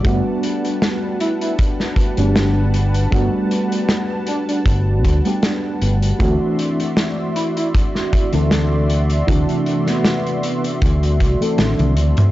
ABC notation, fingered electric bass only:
X:1
M:4/4
L:1/16
Q:"Swing 16ths" 1/4=78
K:G
V:1 name="Fingered electric bass" clef=bass
G,,, z8 z2 G,,,4- G,,, | G,,, z6 z G,,,2 D,, z3 G,,,2 | D,, z8 z2 D,,4- D,, | D,, z6 z D,,2 C,, z A,,, C,, D,, z |]